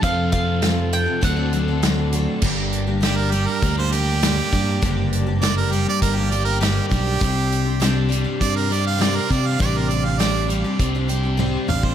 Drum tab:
CC |----------------|x---------------|----------------|----------------|
HH |x-x-x-x-x-x-x-x-|--x-x-x-x-x-x-x-|x-x-x-x-x-x-x-x-|x-x-x-x-x-x-x-x-|
SD |----o-------o---|----o-------o---|----o-------o---|----o-------o---|
T1 |----------------|----------------|----------------|----------------|
T2 |----------------|----------------|----------------|----------------|
BD |o-o-----o-------|o-------o-----o-|o-------o-----o-|o-------o-----o-|

CC |----------------|
HH |x-x-x-x-x-x-----|
SD |----o-----------|
T1 |------------o---|
T2 |--------------o-|
BD |o-------o------o|